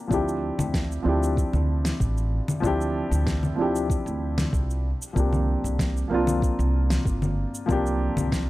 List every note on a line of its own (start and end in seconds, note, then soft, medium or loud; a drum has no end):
0.00 0.07 F3 medium
0.00 0.12 A#3 medium
0.00 0.09 C4 medium
0.00 0.11 D4 medium
0.00 0.13 G4 medium
0.07 0.49 D2 medium
0.07 1.00 F3 medium
0.07 1.01 C4 medium
0.07 1.02 D4 medium
0.07 kick loud
0.12 1.03 E4 medium
0.12 1.03 G4 medium
0.12 cabasa soft
0.28 cabasa soft
0.59 0.96 D2 medium
0.59 low conga medium
0.59 cabasa medium
0.74 kick medium
0.74 snare medium
0.74 cabasa medium
0.92 cabasa soft
1.02 1.44 D2 medium
1.02 2.58 F3 medium
1.02 2.59 C4 medium
1.02 2.60 D4 medium
1.07 2.61 E4 medium
1.07 2.61 G4 medium
1.23 cabasa medium
1.37 kick loud
1.37 cabasa medium
1.53 1.91 D2 medium
1.53 low conga medium
1.53 cabasa soft
1.85 snare medium
1.85 cabasa medium
2.00 2.38 A1 medium
2.00 kick medium
2.00 cabasa medium
2.17 cabasa soft
2.48 low conga medium
2.48 cabasa medium
2.60 3.02 D2 medium
2.60 3.53 F3 medium
2.60 3.54 C4 medium
2.60 3.55 D4 medium
2.60 kick loud
2.64 3.55 E4 medium
2.64 3.56 G4 loud
2.64 cabasa soft
2.81 cabasa soft
3.11 3.49 D2 medium
3.11 cabasa medium
3.27 kick loud
3.27 snare medium
3.27 cabasa medium
3.43 low conga medium
3.43 cabasa soft
3.55 3.96 D2 medium
3.55 4.81 F3 medium
3.55 4.82 C4 medium
3.55 4.83 D4 medium
3.60 4.84 E4 medium
3.60 4.84 G4 medium
3.76 cabasa medium
3.90 kick loud
3.90 cabasa soft
4.06 4.44 D2 loud
4.06 cabasa soft
4.38 snare medium
4.38 low conga medium
4.38 cabasa medium
4.53 4.91 C2 medium
4.53 kick loud
4.53 cabasa soft
4.70 cabasa soft
5.02 cabasa medium
5.13 5.54 C2 medium
5.13 6.06 F3 medium
5.13 6.07 A#3 medium
5.13 6.07 C4 medium
5.13 kick loud
5.17 6.08 D4 medium
5.17 6.09 G4 medium
5.17 cabasa soft
5.33 low conga medium
5.33 cabasa soft
5.64 6.02 C2 medium
5.64 cabasa medium
5.79 kick loud
5.79 snare medium
5.79 cabasa medium
5.97 cabasa soft
6.08 6.49 C2 medium
6.08 7.64 F3 medium
6.08 7.65 A#3 medium
6.08 7.65 C4 medium
6.13 7.66 D4 medium
6.13 7.67 F4 medium
6.27 low conga medium
6.27 cabasa medium
6.42 kick loud
6.42 cabasa medium
6.59 6.97 C2 medium
6.59 cabasa soft
6.90 snare medium
6.90 cabasa medium
7.05 7.44 G1 medium
7.05 kick loud
7.05 cabasa soft
7.22 low conga medium
7.22 cabasa soft
7.55 cabasa medium
7.66 8.07 C2 medium
7.66 8.50 F3 medium
7.66 8.50 A#3 medium
7.66 8.50 C4 medium
7.66 kick loud
7.66 cabasa soft
7.71 8.50 D4 medium
7.71 8.50 G4 loud
7.86 cabasa soft
8.17 8.50 C2 medium
8.17 low conga medium
8.17 cabasa medium
8.32 kick medium
8.32 snare medium
8.32 cabasa medium